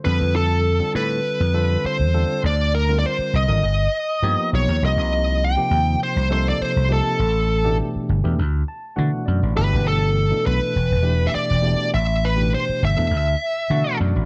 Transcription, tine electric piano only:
<<
  \new Staff \with { instrumentName = "Tine electric piano" } { \time 4/4 \key f \lydian \tempo 4 = 101 r1 | r1 | r1 | r2 r8 a''8 fis''8 d''8 |
r1 | r2. fis''8 d''8 | }
  \new Staff \with { instrumentName = "Tine electric piano" } { \time 4/4 \key f \lydian <d g c' f' a'>4~ <d g c' f' a'>16 <d g c' f' a'>4~ <d g c' f' a'>16 <d g c' f' a'>4 <d g c' f' a'>8 | r8. <d g c' f' bes'>4 <d g c' f' bes'>16 r4 <f ais b dis' g'>4 | <c f bes ees' g'>4~ <c f bes ees' g'>16 <c f bes ees' g'>4~ <c f bes ees' g'>16 <c f bes ees' a'>4 <c f bes ees' g'>8 | r8. <b, e a d' g'>4 <b, e a d' g'>16 r4 <b, e a d' fis'>4 |
<b, e a d' g'>4~ <b, e a d' g'>16 <b, e a d' a'>8. r8 <b, e a d' g'>4 <b, e a d' g'>8 | r8. <b, e a d' g'>4 <b, e a d' a'>16 r4 <b, e a d' fis'>4 | }
>>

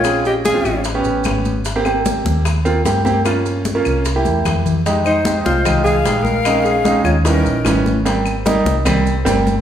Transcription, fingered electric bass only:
\new Staff \with { instrumentName = "Fingered electric bass" } { \clef bass \time 4/4 \key aes \major \tempo 4 = 150 bes,,4. a,,4 a,,8 aes,,4~ | aes,,4. ees,4. g,4~ | g,4. c,4 e,8 f,4~ | f,4. c,4. bes,,4~ |
bes,,4. ees,4 bes,,8 aes,,4~ | aes,,4. c,4. g,,4 | }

